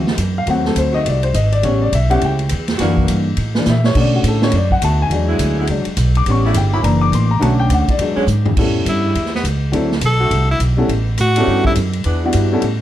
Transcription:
Already playing: D2 D3 A3 C4 F#4
0.07 snare
0.18 F#2, hi-hat pedal, ride
0.38 F5
0.46 D#2 F#3 A3 C4 F#5, ride
0.65 A4, snare
0.75 D2 C5, hi-hat pedal, ride
0.92 D#3 A3 C4 F#4 D#5
1.06 C2 D5, ride
1.23 C5, ride
1.34 G#1 D#5, hi-hat pedal, ride
1.52 D5, ride
1.62 A1 G3 B3 C#4 C#5, ride
1.82 D5
1.92 B1 E5, hi-hat pedal, ride
2.09 E3 G3 A3 B3 C#4 G4 F#5, ride
2.21 C#2 G5, ride
2.39 ride
2.49 E2, hi-hat pedal, ride
2.68 snare, ride
2.78 F#2 E3 A#3 D4 F#4, snare, ride
2.97 kick
3.08 G2, hi-hat pedal, ride
3.37 A2, ride
3.55 E3 A#3 D4, snare
3.65 A#2, snare, hi-hat pedal
3.70 E5
3.84 C#5, snare
3.95 B2 D3 A3 C#4 D5, kick, crash
4.15 F#4
4.23 A2, hi-hat pedal, ride
4.28 A4
4.42 D3 A3 C#4 C#5, snare
4.52 F#2 D5, ride
4.71 F#5, kick
4.82 D2 D3 A3 B3 F#4 A5, hi-hat pedal, ride
5.02 G#5
5.10 E2 F#3 G#3 D4, ride
5.28 D3 G#3 B3 E4
5.39 D2, hi-hat pedal, ride
5.59 D3 G#3 B3 E4
5.67 C#2 F#3 G#3 D4, ride
5.85 muted upright bass stroke, ride
5.97 B1, hi-hat pedal, ride
6.15 D6, ride
6.26 A1 G3 B3 C#4, ride
6.31 C#6
6.45 C#3 G3 A3 E4 E5
6.54 G1 G5, hi-hat pedal, ride
6.72 D3 F#3 A#3 E4 B5
6.82 F#1 E3 A#3 D4 A#5, ride
7.01 D6
7.12 A1 C6, hi-hat pedal, ride
7.31 A#5
7.39 B1 D3 A3 B3 C#4 F#4 A5, ride
7.60 G5
7.70 D2, hi-hat pedal, ride
7.74 F#5
7.88 D5, kick, ride
7.98 E2 F#3 G#3 D4, ride
8.16 D3 G#3 B3 C#4, muted upright bass stroke
8.27 G#2, hi-hat pedal
8.46 floor tom
8.57 A2 G3 B3 C#4 E4 A4, kick, crash
8.85 G2 E4, hi-hat pedal, ride
9.02 C#3 G3 A3 E4
9.15 E2, ride
9.26 snare
9.35 B3, snare
9.44 C#2, hi-hat pedal, ride
9.72 D2 F#3 C4 D4 E4 A4, ride
9.92 snare
10.01 B1, hi-hat pedal, ride
10.06 A4
10.20 D3 A3 C4 F#4
10.31 C2, ride
10.51 E4
10.59 B1, hi-hat pedal, ride
10.77 G3 B3 C#4 E4 A4
10.88 A1, ride
11.17 A2 F#4, hi-hat pedal, ride
11.36 E3 G3 A3 B3 C#4 E4 G4 A4, ride
11.47 G2
11.65 E4, kick
11.75 F#2, hi-hat pedal, ride
11.93 ride
12.04 E2 E3 B3 D4, ride
12.24 G3 B3 D4 E4 F#4
12.33 G2, hi-hat pedal, ride
12.52 G3 B3 C#4 E4 A4
12.62 A2, ride

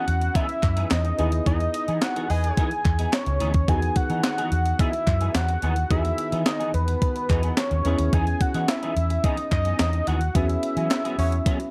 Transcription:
Already playing: B3 C#4 E4 G#4 F#5
0.07 E2, muted clean electric guitar stroke, closed hi-hat
0.20 muted clean electric guitar stroke, closed hi-hat
0.34 E3 B3 D#4 G#4 E5, kick, closed hi-hat
0.48 muted clean electric guitar stroke, closed hi-hat
0.62 F#2, muted clean electric guitar stroke, kick, clap, closed hi-hat
0.76 E3 B3 D#4 G#4, closed hi-hat
0.91 E2 D#5, snare, clap, closed hi-hat
1.04 muted clean electric guitar stroke, closed hi-hat
1.18 D#2 E3 B3 D#4 E4 G#4, closed hi-hat
1.32 muted clean electric guitar stroke, closed hi-hat
1.46 E2 E3 B3 D#4 G#4 D#5, kick, closed hi-hat
1.60 muted clean electric guitar stroke, closed hi-hat
1.74 muted clean electric guitar stroke, closed hi-hat
1.88 E3 B3 D#4 G#4, closed hi-hat
2.02 F#5, muted clean electric guitar stroke, snare, clap, closed hi-hat
2.16 E3 B3 D#4 G#4, closed hi-hat
2.30 E2 G#4 B4 D#5 G#5, muted clean electric guitar stroke, open hi-hat
2.44 muted clean electric guitar stroke, closed hi-hat
2.57 E3 B3 D#4 G#4, kick, closed hi-hat
2.71 muted clean electric guitar stroke, closed hi-hat
2.85 E2, muted clean electric guitar stroke, kick, clap, closed hi-hat
2.99 E3 B3 D#4 G#4, closed hi-hat
3.13 C#5, snare, clap, closed hi-hat
3.26 C#2, muted clean electric guitar stroke, closed hi-hat
3.40 D2 E3 B3 D#4 G#4, closed hi-hat
3.54 D#2, muted clean electric guitar stroke, kick, closed hi-hat
3.68 E2 D#3 E3 B3 D#4 F#4 G#4 G#5, kick, closed hi-hat
3.82 muted clean electric guitar stroke, closed hi-hat
3.96 F#5, muted clean electric guitar stroke, kick, closed hi-hat
4.10 E3 B3 D#4 G#4, closed hi-hat
4.24 snare, clap, closed hi-hat
4.38 E3 B3 D#4 G#4, closed hi-hat
4.52 E2, closed hi-hat
4.66 muted clean electric guitar stroke, closed hi-hat
4.79 E3 B3 D#4 G#4 E5, kick, closed hi-hat
4.93 muted clean electric guitar stroke, closed hi-hat
5.07 F#2, muted clean electric guitar stroke, kick, clap, closed hi-hat
5.21 E3 B3 D#4 G#4, closed hi-hat
5.35 E2 F#5, snare, clap, closed hi-hat
5.49 muted clean electric guitar stroke, closed hi-hat
5.62 D#2 E3 B3 D#4 G#4, closed hi-hat
5.76 muted clean electric guitar stroke, closed hi-hat
5.90 E2 D#3 E3 B3 D#4 F#4 G#4 E5, kick, closed hi-hat
6.05 muted clean electric guitar stroke, closed hi-hat
6.18 muted clean electric guitar stroke, closed hi-hat
6.32 E3 B3 D#4 G#4, closed hi-hat
6.46 D#5, snare, clap, closed hi-hat
6.59 E3 B3 D#4 G#4, closed hi-hat
6.74 E2 B4, muted clean electric guitar stroke, closed hi-hat
6.88 muted clean electric guitar stroke, closed hi-hat
7.02 muted clean electric guitar stroke, kick, closed hi-hat
7.16 muted clean electric guitar stroke, closed hi-hat
7.29 E2 E3 B3 D#4 G#4, kick, clap, closed hi-hat
7.43 E3 B3 D#4 G#4, closed hi-hat
7.57 C#5, snare, clap, closed hi-hat
7.71 D#2, muted clean electric guitar stroke, closed hi-hat
7.84 E2 E3 B3 C#4 D#4 E4 G#4, closed hi-hat
7.99 D#2, muted clean electric guitar stroke, closed hi-hat
8.13 E3 B3 D#4 G#4 G#5, kick, closed hi-hat
8.27 muted clean electric guitar stroke, closed hi-hat
8.41 F#5, muted clean electric guitar stroke, kick, closed hi-hat
8.54 E3 B3 D#4 G#4, closed hi-hat
8.68 E5, muted clean electric guitar stroke, snare, clap, closed hi-hat
8.83 E3 B3 D#4 G#4, closed hi-hat
8.96 E2, muted clean electric guitar stroke, closed hi-hat
9.10 muted clean electric guitar stroke, closed hi-hat
9.24 E3 B3 D#4 G#4 D#5, kick, closed hi-hat
9.37 muted clean electric guitar stroke, closed hi-hat
9.51 F#2 D#5, muted clean electric guitar stroke, kick, clap, closed hi-hat
9.65 E3 B3 D#4 G#4, closed hi-hat
9.79 E2, snare, clap, closed hi-hat
9.93 muted clean electric guitar stroke, closed hi-hat
10.07 D#2 E3 B3 D#4 G#4 F#5, closed hi-hat
10.21 muted clean electric guitar stroke, closed hi-hat
10.35 E2 F#3 B3 C#4 F#4 G#4 E5, kick, closed hi-hat
10.49 muted clean electric guitar stroke, closed hi-hat
10.63 muted clean electric guitar stroke, closed hi-hat
10.77 E3 F#3 B3 C#4 G#4, closed hi-hat
10.91 muted clean electric guitar stroke, snare, clap, closed hi-hat
11.04 F#3 B3 C#4 G#4, closed hi-hat
11.18 E2 F#4 G#4 C#5, open hi-hat
11.32 muted clean electric guitar stroke, closed hi-hat
11.46 F#3 B3 C#4 G#4, kick, closed hi-hat
11.60 muted clean electric guitar stroke, closed hi-hat

